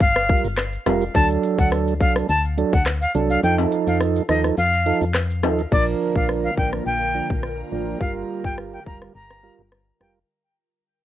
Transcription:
0.00 0.35 G1 loud
0.00 0.42 F5 loud
0.00 kick loud
0.00 shaker medium
0.16 cross-stick loud
0.16 shaker medium
0.29 0.47 G3 medium
0.29 0.48 F4 medium
0.29 0.48 A#4 medium
0.29 kick loud
0.29 closed hi-hat medium
0.29 shaker medium
0.44 0.78 G1 loud
0.44 shaker medium
0.57 cross-stick loud
0.57 clap loud
0.57 shaker medium
0.73 shaker medium
0.86 1.09 F1 medium
0.86 1.05 G3 medium
0.86 1.05 F4 medium
0.86 1.05 A#4 medium
0.86 cross-stick medium
0.86 closed hi-hat medium
0.86 high timbale medium
0.86 shaker medium
1.01 shaker medium
1.15 1.38 D2 loud
1.15 1.94 F#3 medium
1.15 1.94 D4 medium
1.15 1.94 A4 loud
1.15 1.26 A5 loud
1.15 kick loud
1.15 shaker medium
1.30 shaker medium
1.43 closed hi-hat medium
1.43 shaker medium
1.58 2.02 D2 medium
1.58 1.69 F#5 medium
1.58 kick medium
1.58 shaker medium
1.72 cross-stick loud
1.72 shaker medium
1.87 shaker medium
2.00 2.23 C2 loud
2.00 2.27 F#3 medium
2.00 2.27 D4 medium
2.00 2.27 A4 medium
2.00 2.12 F5 medium
2.00 kick medium
2.00 closed hi-hat medium
2.00 shaker medium
2.16 cross-stick loud
2.16 shaker medium
2.29 2.64 D2 loud
2.29 2.41 A5 loud
2.29 shaker medium
2.44 shaker medium
2.57 2.76 F#3 medium
2.57 2.76 D4 medium
2.57 2.76 A4 medium
2.57 closed hi-hat medium
2.57 shaker medium
2.73 3.06 D2 loud
2.73 2.83 F#5 medium
2.73 kick medium
2.73 shaker medium
2.86 cross-stick loud
2.86 clap loud
2.86 shaker medium
3.01 3.12 F5 medium
3.01 shaker medium
3.15 3.38 C2 loud
3.15 3.41 F#3 medium
3.15 3.41 D4 medium
3.15 3.41 A4 medium
3.15 closed hi-hat medium
3.15 shaker medium
3.30 3.40 F5 medium
3.30 shaker medium
3.43 3.66 F2 loud
3.43 4.23 F3 loud
3.43 4.23 D#4 medium
3.43 4.23 A4 loud
3.43 3.55 G5 loud
3.43 shaker medium
3.58 high timbale medium
3.58 shaker medium
3.72 closed hi-hat medium
3.72 shaker medium
3.87 4.21 F2 medium
3.87 3.97 F5 medium
3.87 shaker medium
4.01 cross-stick loud
4.01 shaker medium
4.16 shaker medium
4.29 4.52 D#2 medium
4.29 4.55 F3 medium
4.29 4.56 D#4 medium
4.29 4.56 A4 medium
4.29 4.41 D#5 medium
4.29 cross-stick medium
4.29 closed hi-hat medium
4.29 shaker medium
4.44 cross-stick medium
4.44 shaker medium
4.58 4.93 F2 loud
4.58 4.99 F5 loud
4.58 shaker medium
4.73 shaker medium
4.86 5.05 F3 medium
4.86 5.05 D#4 medium
4.86 5.05 A4 medium
4.86 closed hi-hat medium
4.86 shaker medium
5.01 5.45 F2 loud
5.01 shaker medium
5.15 cross-stick loud
5.15 clap loud
5.15 shaker medium
5.30 shaker medium
5.43 5.66 D#2 medium
5.43 5.62 F3 medium
5.43 5.62 D#4 medium
5.43 5.62 A4 medium
5.43 cross-stick medium
5.43 closed hi-hat medium
5.43 high timbale medium
5.43 shaker medium
5.58 shaker medium
5.72 5.95 A#1 loud
5.72 10.25 D3 medium
5.72 6.51 F3 medium
5.72 7.98 A#3 medium
5.72 6.51 D4 medium
5.72 10.25 F4 medium
5.72 10.25 A#4 loud
5.72 6.51 A#4 loud
5.72 5.83 D5 medium
5.72 kick loud
5.72 crash medium
6.16 6.49 A#1 medium
6.16 6.26 F5 medium
6.16 kick medium
6.29 cross-stick medium
6.44 6.54 F5 medium
6.57 6.80 A1 medium
6.57 6.84 F3 medium
6.57 6.84 D4 medium
6.57 6.84 A#4 medium
6.57 6.69 G5 medium
6.57 kick medium
6.73 cross-stick medium
6.86 7.21 A#1 loud
6.86 7.27 G5 loud
7.15 7.33 F3 medium
7.15 7.33 D4 medium
7.15 7.33 A#4 medium
7.30 7.64 A#1 medium
7.30 kick medium
7.43 cross-stick medium
7.72 7.95 A1 medium
7.72 7.98 F3 medium
7.72 7.98 D4 medium
7.72 7.99 A#4 medium
8.00 8.23 G1 loud
8.00 8.80 G3 medium
8.00 10.27 G3 medium
8.00 8.80 F4 medium
8.00 8.80 A#4 loud
8.00 8.12 F5 medium
8.00 kick loud
8.44 8.78 G1 medium
8.44 8.54 G5 medium
8.44 kick medium
8.58 cross-stick medium
8.73 8.83 G5 medium
8.86 9.09 F1 medium
8.86 9.13 G3 medium
8.86 9.13 F4 medium
8.86 9.13 A#4 medium
8.86 8.98 A#5 medium
8.86 kick medium
9.02 cross-stick medium
9.15 9.50 G1 loud
9.15 9.56 A#5 medium
9.30 cross-stick medium
9.43 9.62 G3 medium
9.43 9.62 F4 medium
9.43 9.62 A#4 medium
9.59 9.92 G1 medium
9.72 cross-stick medium
10.00 10.23 F1 medium
10.00 10.19 G3 medium
10.00 10.19 F4 medium
10.00 10.19 A#4 medium
10.00 10.12 G5 medium
10.00 cross-stick medium

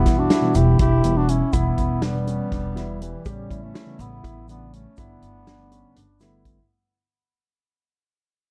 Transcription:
0.00 0.27 B2 medium
0.00 0.27 E3 medium
0.00 0.27 G3 medium
0.00 0.21 B3 medium
0.00 0.28 B3 medium
0.00 0.19 E4 medium
0.06 0.26 E2 medium
0.06 0.26 E4 medium
0.06 kick medium
0.06 snare soft
0.06 closed hi-hat medium
0.17 0.57 D4 medium
0.17 0.57 F#4 medium
0.30 0.71 E4 medium
0.30 snare loud
0.30 closed hi-hat medium
0.30 shaker soft
0.42 0.88 B2 medium
0.42 0.88 E3 medium
0.42 0.88 G3 medium
0.42 0.89 B3 medium
0.54 0.75 E1 medium
0.54 0.80 E4 medium
0.54 0.80 G4 medium
0.54 closed hi-hat medium
0.54 shaker soft
0.79 1.40 E1 medium
0.79 1.20 E4 medium
0.79 1.18 E4 loud
0.79 1.19 G4 medium
0.79 kick loud
0.79 closed hi-hat medium
1.03 1.40 B2 medium
1.03 1.40 E3 medium
1.03 1.41 G3 medium
1.03 1.41 B3 medium
1.03 closed hi-hat medium
1.17 1.30 D4 medium
1.17 1.31 F#4 medium
1.28 1.54 C#4 medium
1.28 1.53 E4 medium
1.28 closed hi-hat medium
1.52 1.74 E1 medium
1.52 1.99 B2 medium
1.52 1.99 E3 medium
1.52 1.99 G3 medium
1.52 2.04 B3 medium
1.52 1.99 B3 medium
1.52 1.94 E4 medium
1.52 2.04 E4 medium
1.52 kick loud
1.52 closed hi-hat medium
1.52 shaker medium
1.78 2.38 E1 medium
1.78 kick medium
1.78 closed hi-hat medium
2.02 3.03 G3 loud
2.02 3.03 B3 medium
2.02 2.22 D4 medium
2.02 snare loud
2.02 closed hi-hat medium
2.02 shaker soft
2.13 2.60 B2 medium
2.13 2.60 E3 medium
2.13 2.61 G3 medium
2.13 2.61 B3 medium
2.27 2.47 C#4 medium
2.27 closed hi-hat medium
2.27 shaker soft
2.52 3.13 E1 medium
2.52 2.72 D4 medium
2.52 kick medium
2.52 snare soft
2.52 closed hi-hat medium
2.75 3.12 B2 medium
2.75 3.13 E3 medium
2.75 3.13 G3 medium
2.75 3.13 B3 medium
2.75 3.17 E4 medium
2.75 snare soft
2.75 closed hi-hat medium
3.02 3.29 E3 medium
3.02 3.27 G3 medium
3.02 closed hi-hat medium
3.25 3.46 A1 loud
3.25 3.71 C#3 medium
3.25 3.72 E3 medium
3.25 3.72 G3 medium
3.25 3.65 G3 medium
3.25 3.72 B3 medium
3.25 3.63 C#4 medium
3.25 3.46 G4 medium
3.25 kick loud
3.25 closed hi-hat medium
3.25 shaker soft
3.50 3.71 A2 medium
3.50 3.70 E4 medium
3.50 kick medium
3.50 closed hi-hat medium
3.63 4.02 A3 medium
3.63 4.01 C#4 medium
3.74 4.15 E4 medium
3.74 snare loud
3.74 closed hi-hat medium
3.74 shaker soft
3.86 4.33 C#3 medium
3.86 4.33 E3 medium
3.86 4.33 G3 medium
3.86 4.33 B3 medium
3.99 4.19 A1 loud
3.99 4.49 B3 medium
3.99 4.48 E4 medium
3.99 closed hi-hat medium
3.99 shaker soft
4.23 4.85 A1 medium
4.23 4.64 E4 medium
4.23 kick loud
4.23 closed hi-hat medium
4.47 4.85 C#3 medium
4.47 4.85 E3 medium
4.47 4.85 G3 medium
4.47 4.86 B3 medium
4.47 4.76 B3 medium
4.47 4.75 D4 medium
4.47 closed hi-hat medium
4.47 shaker soft
4.73 5.00 A3 medium
4.73 5.00 C#4 medium
4.73 closed hi-hat medium
4.97 5.18 G1 medium
4.97 5.43 D3 medium
4.97 5.43 G3 medium
4.97 5.44 A3 medium
4.97 5.44 B3 medium
4.97 6.21 B3 medium
4.97 6.21 D4 medium
4.97 5.38 E4 medium
4.97 kick loud
4.97 closed hi-hat medium
4.97 shaker medium
5.22 5.83 G1 medium
5.22 closed hi-hat medium
5.46 5.68 D4 medium
5.46 snare loud
5.46 closed hi-hat medium
5.46 shaker soft
5.58 6.05 D3 medium
5.58 6.05 G3 medium
5.58 6.05 A3 medium
5.58 6.05 B3 medium
5.71 5.92 C#4 medium
5.71 closed hi-hat medium
5.96 6.57 G1 medium
5.96 6.17 D4 medium
5.96 closed hi-hat medium
6.20 6.57 D3 medium
6.20 6.58 G3 medium
6.20 6.58 A3 medium
6.20 6.58 B3 loud
6.20 6.61 E4 medium
6.20 snare soft
6.20 closed hi-hat medium
6.20 shaker soft
6.45 kick medium
6.45 closed hi-hat medium

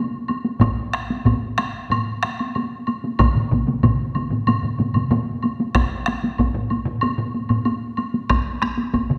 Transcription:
0.28 taiko high medium
0.28 high woodblock soft
0.45 taiko high medium
0.60 taiko loud
0.60 taiko low-mid loud
0.60 taiko high medium
0.60 high woodblock soft
0.93 taiko rim medium
1.10 taiko high medium
1.25 taiko medium
1.25 taiko low-mid loud
1.25 taiko high medium
1.25 high woodblock soft
1.58 taiko rim medium
1.58 taiko high medium
1.58 high woodblock soft
1.90 taiko low-mid medium
1.90 taiko high medium
1.90 high woodblock medium
2.23 taiko rim medium
2.23 taiko high soft
2.39 taiko high medium
2.39 high woodblock soft
2.55 taiko high medium
2.55 high woodblock soft
2.87 taiko high medium
2.87 high woodblock soft
3.04 taiko high medium
3.19 taiko loud
3.19 taiko low-mid medium
3.19 taiko mid medium
3.19 taiko high medium
3.19 high woodblock medium
3.35 taiko low-mid medium
3.35 taiko mid medium
3.51 taiko medium
3.51 taiko low-mid medium
3.51 taiko mid medium
3.51 taiko high medium
3.67 taiko low-mid medium
3.67 taiko mid medium
3.67 taiko high medium
3.83 taiko medium
3.83 taiko low-mid loud
3.83 taiko mid loud
3.83 taiko high medium
3.83 high woodblock soft
4.15 taiko low-mid medium
4.15 taiko mid medium
4.15 taiko high medium
4.15 high woodblock soft
4.31 taiko low-mid medium
4.31 taiko mid medium
4.31 taiko high medium
4.47 taiko low-mid medium
4.47 taiko mid medium
4.47 taiko high medium
4.47 high woodblock medium
4.63 taiko low-mid medium
4.63 taiko mid medium
4.78 taiko low-mid medium
4.78 taiko mid medium
4.78 taiko high medium
4.94 taiko low-mid medium
4.94 taiko mid medium
4.94 taiko high medium
4.94 high woodblock soft
5.11 taiko low-mid loud
5.11 taiko mid medium
5.11 taiko high medium
5.11 high woodblock soft
5.43 taiko high medium
5.43 high woodblock soft
5.60 taiko high medium
5.75 taiko rim medium
5.75 taiko loud
5.75 taiko high medium
5.75 high woodblock soft
6.06 taiko rim medium
6.06 taiko high medium
6.24 taiko high medium
6.38 taiko medium
6.38 taiko high medium
6.38 high woodblock soft
6.54 taiko low-mid medium
6.70 taiko high medium
6.70 high woodblock soft
6.85 taiko low-mid loud
7.01 taiko high medium
7.01 high woodblock soft
7.18 taiko low-mid medium
7.34 taiko high medium
7.49 taiko low-mid medium
7.49 taiko high medium
7.49 high woodblock soft
7.65 taiko high medium
7.65 high woodblock soft
7.97 taiko high medium
7.97 high woodblock soft
8.14 taiko high medium
8.30 taiko rim medium
8.30 taiko loud
8.30 taiko high medium
8.30 high woodblock soft
8.62 taiko rim medium
8.62 taiko high medium
8.78 taiko high medium
8.94 taiko medium
8.94 taiko high medium
8.94 high woodblock soft
9.10 taiko mid medium

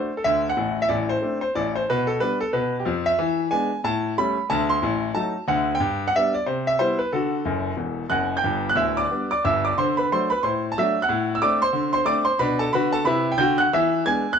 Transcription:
0.00 0.12 C5 medium
0.17 0.23 A4 medium
0.24 0.50 D2 medium
0.24 0.50 D3 medium
0.24 0.46 E5 medium
0.49 0.77 F#5 medium
0.57 0.82 A1 medium
0.57 0.82 A2 medium
0.82 0.88 E5 medium
0.89 1.15 A1 medium
0.89 1.15 A2 medium
0.89 1.05 D5 medium
1.09 1.37 C5 medium
1.22 1.39 A3 soft
1.22 1.40 C4 soft
1.22 1.40 D4 soft
1.41 1.52 C5 medium
1.55 1.81 A1 medium
1.55 1.81 A2 medium
1.55 1.71 D5 medium
1.76 1.86 C5 medium
1.90 2.16 B2 medium
1.90 2.05 B4 medium
2.07 2.18 A4 medium
2.20 2.38 G3 soft
2.20 2.39 B3 soft
2.20 2.39 D4 soft
2.20 2.37 B4 medium
2.41 2.51 A4 medium
2.53 2.81 B2 medium
2.53 2.75 B4 medium
2.80 2.86 G4 medium
2.85 3.12 F2 medium
2.85 3.12 F3 medium
3.06 3.45 E5 medium
3.19 3.46 E3 medium
3.51 3.69 G#3 soft
3.51 3.69 B3 soft
3.51 3.70 D4 soft
3.51 3.79 G#5 medium
3.84 4.12 A2 medium
3.84 4.12 A5 medium
4.18 4.36 G3 soft
4.18 4.36 A3 soft
4.18 4.36 C#4 soft
4.18 4.45 B5 medium
4.50 4.76 D2 medium
4.50 4.76 D3 medium
4.50 4.66 A5 medium
4.70 5.09 C6 medium
4.82 5.09 A1 medium
4.82 5.09 A2 medium
5.14 5.33 F#3 soft
5.14 5.33 A3 soft
5.14 5.33 D#4 soft
5.14 5.43 A5 medium
5.48 5.74 D2 medium
5.48 5.74 D3 medium
5.48 5.71 F#5 medium
5.75 6.03 G5 medium
5.80 6.09 G2 medium
6.08 6.14 F#5 medium
6.16 6.33 G3 soft
6.16 6.34 B3 soft
6.16 6.34 D4 soft
6.16 6.32 E5 medium
6.34 6.45 D5 medium
6.46 6.75 C3 medium
6.46 6.63 C5 medium
6.67 6.78 E5 medium
6.79 6.98 G3 soft
6.79 6.98 B3 soft
6.79 6.99 E4 soft
6.79 6.96 C5 medium
6.99 7.10 B4 medium
7.12 7.39 D3 medium
7.12 7.40 F#4 medium
7.12 8.13 A4 medium
7.45 7.70 F#1 medium
7.45 7.70 F#2 medium
7.77 8.02 E1 medium
7.77 8.02 E2 soft
8.10 8.35 F#1 medium
8.10 8.35 F#2 medium
8.10 8.36 F#5 medium
8.10 8.33 F#6 medium
8.37 8.68 G5 medium
8.37 8.65 G6 medium
8.44 8.71 G1 medium
8.44 8.70 G2 medium
8.69 8.77 F#6 medium
8.76 9.03 D1 medium
8.76 9.03 D2 medium
8.76 8.95 E5 medium
8.76 8.93 E6 medium
8.97 9.28 D5 medium
8.97 9.25 D6 medium
9.11 9.29 G3 soft
9.11 9.29 B3 soft
9.11 9.29 D4 soft
9.31 9.43 D5 medium
9.31 9.42 D6 medium
9.44 9.71 G1 medium
9.44 9.70 G2 medium
9.44 9.63 E5 medium
9.44 9.61 E6 medium
9.65 9.77 D5 medium
9.65 9.75 D6 medium
9.78 10.05 D3 medium
9.78 9.96 C5 medium
9.78 9.94 C6 medium
9.97 10.09 B4 medium
9.97 10.08 B5 medium
10.12 10.29 F#3 soft
10.12 10.29 A3 soft
10.12 10.29 D4 soft
10.12 10.29 C5 medium
10.12 10.28 C6 medium
10.30 10.43 B4 medium
10.30 10.41 B5 medium
10.43 10.71 A2 medium
10.43 10.68 C5 medium
10.43 10.65 C6 medium
10.72 10.77 A5 medium
10.78 10.95 F#3 soft
10.78 10.95 A3 soft
10.78 10.96 D4 soft
10.78 11.02 E5 medium
10.78 10.99 E6 medium
11.02 11.33 F#5 medium
11.02 11.30 F#6 medium
11.09 11.36 A2 medium
11.35 11.41 E6 medium
11.42 11.60 A3 medium
11.42 11.60 C4 soft
11.42 11.60 D4 soft
11.42 11.60 D5 medium
11.42 11.58 D6 medium
11.62 11.92 C5 medium
11.62 11.89 C6 medium
11.73 12.01 D3 medium
11.93 12.06 C5 medium
11.93 12.04 C6 medium
12.05 12.24 A3 medium
12.05 12.24 C4 soft
12.05 12.25 D4 medium
12.05 12.25 D5 medium
12.05 12.23 D6 medium
12.25 12.38 C5 medium
12.25 12.36 C6 medium
12.39 12.66 B2 medium
12.39 12.67 D4 medium
12.39 12.58 B4 medium
12.39 12.56 B5 medium
12.59 12.72 A4 medium
12.59 12.70 A5 medium
12.73 12.99 D3 medium
12.73 13.00 F#4 medium
12.73 12.92 B4 medium
12.73 12.89 B5 medium
12.93 13.05 A4 medium
12.93 13.03 A5 medium
13.04 13.31 C3 medium
13.04 13.33 E4 medium
13.04 13.30 B4 medium
13.04 13.28 B5 medium
13.32 13.38 G5 medium
13.38 13.64 D3 medium
13.38 13.66 F#4 medium
13.38 13.57 G5 medium
13.38 13.55 G6 loud
13.58 13.71 F#5 medium
13.58 13.69 F#6 medium
13.73 14.00 E3 medium
13.73 14.03 E5 medium
13.73 14.00 E6 medium
14.05 14.23 G#3 soft
14.05 14.24 B3 soft
14.05 14.24 D4 soft
14.05 14.30 G#5 medium
14.05 14.27 G#6 medium
14.33 14.38 F#6 medium

